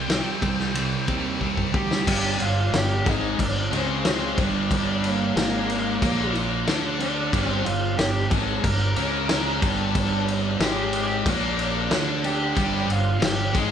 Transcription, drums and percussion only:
0.10 snare loud
0.10 ride medium
0.42 kick medium
0.42 ride medium
0.59 snare soft
0.75 ride medium
1.08 kick medium
1.08 ride medium
1.41 kick medium
1.57 kick medium
1.74 kick loud
1.91 snare medium
2.07 kick loud
2.07 crash loud
2.07 crash medium
2.40 crash medium
2.74 snare loud
2.74 crash medium
3.06 kick loud
3.06 crash medium
3.39 kick medium
3.39 crash medium
3.73 crash medium
4.05 snare loud
4.05 crash medium
4.38 kick loud
4.38 crash medium
4.71 kick loud
4.71 crash medium
5.04 crash medium
5.37 snare loud
5.37 crash medium
5.70 crash medium
6.02 kick loud
6.02 crash medium
6.35 crash medium
6.67 snare loud
6.67 crash medium
7.00 crash medium
7.33 kick loud
7.33 crash medium
7.66 crash medium
7.99 snare loud
7.99 crash medium
8.31 kick loud
8.31 crash medium
8.64 kick medium
8.64 crash medium
8.96 crash medium
9.29 snare loud
9.29 crash medium
9.62 kick loud
9.62 crash medium
9.95 kick medium
9.95 crash medium
10.28 crash medium
10.60 snare loud
10.60 crash medium
10.93 crash medium
11.26 kick loud
11.26 crash medium
11.59 crash medium
11.91 snare loud
11.91 crash medium
12.24 crash medium
12.57 kick loud
12.57 crash medium
12.90 crash medium
13.22 snare loud
13.22 crash medium
13.55 kick loud
13.55 crash medium

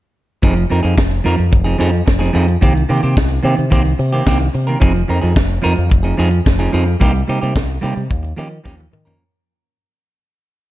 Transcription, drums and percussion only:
0.43 kick loud
0.43 closed hi-hat medium
0.57 closed hi-hat soft
0.57 tambourine medium
0.70 open hi-hat medium
0.70 tambourine medium
0.84 closed hi-hat soft
0.97 kick loud
0.97 snare loud
0.97 closed hi-hat soft
0.97 tambourine medium
1.11 closed hi-hat soft
1.23 open hi-hat medium
1.23 tambourine soft
1.38 closed hi-hat soft
1.38 tambourine soft
1.52 kick loud
1.52 closed hi-hat medium
1.52 tambourine medium
1.66 closed hi-hat soft
1.78 open hi-hat medium
1.78 tambourine soft
1.95 closed hi-hat soft
2.07 kick loud
2.07 snare loud
2.07 closed hi-hat medium
2.07 tambourine medium
2.22 snare soft
2.22 closed hi-hat soft
2.34 open hi-hat medium
2.34 tambourine medium
2.48 closed hi-hat soft
2.48 tambourine soft
2.62 kick loud
2.62 closed hi-hat medium
2.76 closed hi-hat soft
2.76 tambourine soft
2.90 open hi-hat medium
2.90 tambourine medium
3.04 closed hi-hat soft
3.17 kick loud
3.17 snare loud
3.17 closed hi-hat medium
3.17 tambourine medium
3.31 closed hi-hat soft
3.44 open hi-hat medium
3.44 tambourine soft
3.59 closed hi-hat soft
3.72 kick loud
3.72 closed hi-hat medium
3.72 tambourine medium
3.85 closed hi-hat soft
3.98 open hi-hat medium
3.98 tambourine medium
4.13 closed hi-hat soft
4.13 tambourine soft
4.26 kick loud
4.26 snare loud
4.26 closed hi-hat medium
4.26 tambourine medium
4.41 closed hi-hat soft
4.54 open hi-hat medium
4.54 tambourine soft
4.67 closed hi-hat soft
4.67 tambourine soft
4.82 kick loud
4.82 closed hi-hat medium
4.96 closed hi-hat soft
4.96 tambourine soft
5.09 open hi-hat medium
5.09 tambourine medium
5.23 closed hi-hat soft
5.36 kick loud
5.36 snare loud
5.36 closed hi-hat medium
5.36 tambourine medium
5.50 closed hi-hat soft
5.63 open hi-hat medium
5.63 tambourine soft
5.78 closed hi-hat soft
5.78 tambourine soft
5.91 kick loud
5.91 closed hi-hat medium
5.91 tambourine medium
6.05 closed hi-hat soft
6.17 open hi-hat medium
6.17 tambourine soft
6.34 closed hi-hat soft
6.46 kick loud
6.46 snare medium
6.46 closed hi-hat medium
6.46 tambourine medium
6.61 closed hi-hat soft
6.73 open hi-hat medium
6.73 tambourine soft
6.87 closed hi-hat soft
6.87 tambourine soft
7.01 kick loud
7.01 closed hi-hat medium
7.15 closed hi-hat soft
7.15 tambourine medium
7.29 open hi-hat medium
7.29 tambourine medium
7.43 closed hi-hat soft
7.55 kick loud
7.55 snare loud
7.55 closed hi-hat medium
7.55 tambourine medium
7.70 closed hi-hat soft
7.82 open hi-hat medium
7.82 tambourine soft
7.97 closed hi-hat soft
7.97 tambourine soft
8.11 kick loud
8.11 closed hi-hat medium
8.11 tambourine soft
8.24 closed hi-hat soft
8.37 open hi-hat medium
8.37 tambourine medium
8.53 closed hi-hat soft
8.65 kick loud
8.65 snare medium
8.65 tambourine loud
8.80 high tom medium
8.93 mid tom medium
8.93 tambourine medium
9.07 floor tom medium
9.07 tambourine soft

